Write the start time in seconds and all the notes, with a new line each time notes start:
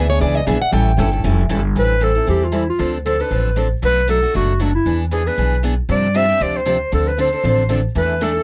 Already playing: D2
0.09 B3 D4 G#4 C#5
0.20 C#2 E3 B3 D4 G#4 B4 D5
0.35 D#5
0.47 B1 E3 B3 D4 G#4 B4 E5
0.61 F#5, muted upright bass stroke
0.72 A1 E3 G3 C#4 E4 A4 G5
0.98 G1 E3 G3 C#4 E4 A4
1.12 C#4 E4 A4
1.24 F1 E3 G3 C#4 E4 A4
1.49 G1 E3 G3 C#4 E4 A4
1.76 A1 E3 G3 C4 E4 A4 B4
2.01 E3 G3 C4 E4 A4
2.15 C4 E4 A4
2.27 E2 E3 G3 C4 E4 G4 A4
2.44 F4
2.52 E3 G3 C4 E4 A4
2.70 F4
2.79 D2 D3 F3 C4 D4 A4
3.06 D3 F3 C4 D4 A4
3.20 C4 D4 A4 B4
3.31 A1 D3 F3 C4 D4 A4
3.56 D3 F3 C4 D4 A4
3.82 B1 B2 F#3 A3 D4 F#4 B4
4.08 B2 F#3 A3 D4 F#4 A4
4.22 A3 D4 F#4
4.34 F#1 B2 F#3 A3 D4 F#4
4.60 B2 F#3 A3 D4 F#4
4.75 E4
4.86 E2 E3 B3 D4 G#4
5.11 E3 B3 D4 G#4
5.26 B3 D4 G#4 B4
5.38 B1 E3 B3 D4 G#4
5.63 E3 B3 D4 G#4
5.89 G2 C3 F3 C4 D4 G4 D5
6.14 C3 F3 C4 D4 G4 E5
6.28 C4 D4 G4
6.40 D2 C3 F3 C4 D4 G4 D5
6.57 C5
6.65 C3 F3 C4 D4 G4
6.92 D2 D3 F3 C4 D4 A4
7.08 B4
7.19 D3 F3 C4 D4 A4 C5
7.33 C4 D4 A4
7.44 A1 D3 F3 C4 D4 A4
7.69 D3 F3 C4 D4 A4
7.95 E2 E3 A3 D4 E4 A4 B4
8.21 E3 A3 D4 E4 A4
8.35 D4 E4 A4